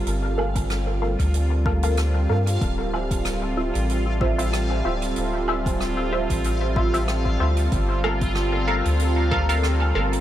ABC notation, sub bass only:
X:1
M:4/4
L:1/16
Q:"Swing 16ths" 1/4=94
K:Dm
V:1 name="Sub bass" clef=bass
G,,,6- G,,, D,,6- D,, G,,2 | D,,,6- D,,, A,,,6- A,,, D,,,2 | D,,,6- D,,, A,,,6- A,,, D,,2 | G,,,6- G,,, D,,6- D,, G,,,2 |]